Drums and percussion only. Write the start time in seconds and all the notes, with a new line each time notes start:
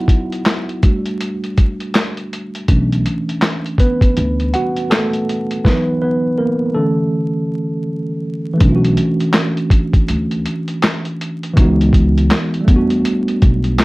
0.08 kick, closed hi-hat
0.32 closed hi-hat
0.45 snare, clap, closed hi-hat
0.69 closed hi-hat
0.83 kick, closed hi-hat
1.06 closed hi-hat
1.21 closed hi-hat
1.44 closed hi-hat
1.58 kick, closed hi-hat
1.80 closed hi-hat
1.94 snare, clap, closed hi-hat
2.17 closed hi-hat
2.33 closed hi-hat
2.55 closed hi-hat
2.68 kick, closed hi-hat
2.92 closed hi-hat
3.06 closed hi-hat
3.29 closed hi-hat
3.41 snare, clap, closed hi-hat
3.66 closed hi-hat
3.78 kick, closed hi-hat
4.01 kick, closed hi-hat
4.17 closed hi-hat
4.40 closed hi-hat
4.54 closed hi-hat
4.76 closed hi-hat
4.91 snare, clap, closed hi-hat
5.13 closed hi-hat
5.29 closed hi-hat
5.51 closed hi-hat
5.65 kick, snare
8.60 kick, closed hi-hat
8.85 closed hi-hat
8.97 closed hi-hat
9.20 closed hi-hat
9.33 snare, clap, closed hi-hat
9.57 closed hi-hat
9.70 kick, closed hi-hat
9.93 kick, closed hi-hat
10.08 closed hi-hat
10.31 closed hi-hat
10.46 closed hi-hat
10.68 closed hi-hat
10.82 snare, clap, closed hi-hat
11.05 closed hi-hat
11.21 closed hi-hat
11.43 closed hi-hat
11.57 kick, closed hi-hat
11.81 closed hi-hat
11.93 kick, closed hi-hat
12.18 closed hi-hat
12.30 snare, clap, closed hi-hat
12.54 closed hi-hat
12.68 kick, closed hi-hat
12.90 closed hi-hat
13.05 closed hi-hat
13.28 closed hi-hat
13.42 kick, closed hi-hat
13.64 closed hi-hat
13.78 snare, clap, closed hi-hat